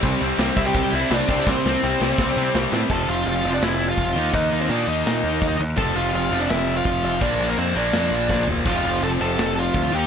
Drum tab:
CC |xxxxxxxx|--------|--------|--------|
HH |--------|--------|oooooooo|oooooooo|
SD |--o---o-|oo-oo-oo|----o---|----o---|
FT |--------|--------|--------|--------|
BD |o--oo--o|o---o---|o-----o-|o-----o-|

CC |--------|--------|x-------|
HH |oooooooo|oooooo--|-ooooooo|
SD |----o---|----o-o-|----o---|
FT |--------|-------o|--------|
BD |o-----o-|o-----o-|o-----o-|